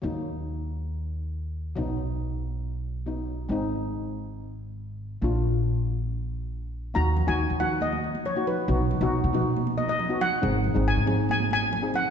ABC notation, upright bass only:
X:1
M:4/4
L:1/16
Q:1/4=139
K:Ebm
V:1 name="Upright bass" clef=bass
E,,16 | =B,,,16 | A,,,16 | B,,,16 |
E,,3 E,,2 E,8 z3 | =B,,,3 B,,,2 =B,,8 z3 | A,,,3 A,,,2 A,,8 z3 |]